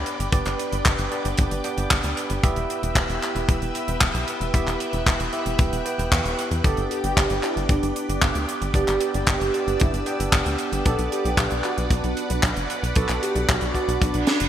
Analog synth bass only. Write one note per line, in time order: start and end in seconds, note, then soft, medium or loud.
0.20 0.31 G1 medium
0.32 0.44 G1 loud
0.46 0.57 G1 medium
0.72 0.83 G1 medium
0.85 0.96 G1 loud
0.99 1.09 G1 medium
1.25 1.36 G1 medium
1.39 1.49 G1 loud
1.51 1.62 G1 medium
1.77 1.88 G1 medium
1.91 2.02 G1 loud
2.04 2.15 D2 medium
2.30 2.41 G1 medium
2.43 2.54 E1 loud
2.56 2.67 E1 medium
2.83 2.94 E1 medium
2.95 3.07 E1 loud
3.09 3.20 E1 medium
3.35 3.46 E1 medium
3.49 3.60 E1 loud
3.62 3.73 E1 medium
3.88 3.99 E1 medium
4.01 4.12 E1 loud
4.14 4.25 B1 medium
4.41 4.52 E1 medium
4.54 4.65 E1 loud
4.67 4.78 E1 medium
4.93 5.04 E1 medium
5.06 5.17 E1 loud
5.20 5.31 E1 medium
5.46 5.57 E1 medium
5.59 5.70 E1 loud
5.72 5.83 E1 medium
5.98 6.09 E1 medium
6.12 6.23 E2 loud
6.25 6.36 E1 medium
6.51 6.62 E2 medium
6.64 6.75 G1 loud
6.78 6.88 G1 medium
7.04 7.15 G1 medium
7.17 7.28 G1 loud
7.30 7.41 G1 medium
7.56 7.67 G1 medium
7.69 7.80 G1 loud
7.83 7.94 G1 medium
8.09 8.20 G1 medium
8.22 8.33 G1 loud
8.35 8.46 D2 medium
8.62 8.73 G1 medium
8.74 8.85 G1 loud
8.88 8.99 G1 medium
9.14 9.25 G1 medium
9.27 9.38 G1 loud
9.41 9.52 G1 medium
9.67 9.78 G1 medium
9.81 9.92 G1 loud
9.93 10.04 G1 medium
10.20 10.31 G1 medium
10.32 10.43 G1 loud
10.46 10.57 D2 medium
10.72 10.83 G1 medium
10.86 10.96 B1 loud
10.99 11.10 B1 medium
11.25 11.36 B1 medium
11.37 11.49 B1 loud
11.51 11.62 B1 medium
11.78 11.89 B1 medium
11.90 12.01 B1 loud
12.04 12.15 B1 medium
12.30 12.41 B1 medium
12.43 12.54 B1 loud
12.56 12.67 F#1 medium
12.83 12.94 B1 medium
12.96 13.07 B1 loud
13.09 13.20 B1 medium
13.35 13.46 B1 medium
13.49 13.60 B1 loud
13.62 13.73 B1 medium
13.88 13.99 B1 medium
14.02 14.12 B1 loud
14.14 14.25 B1 medium
14.41 14.48 F#1 medium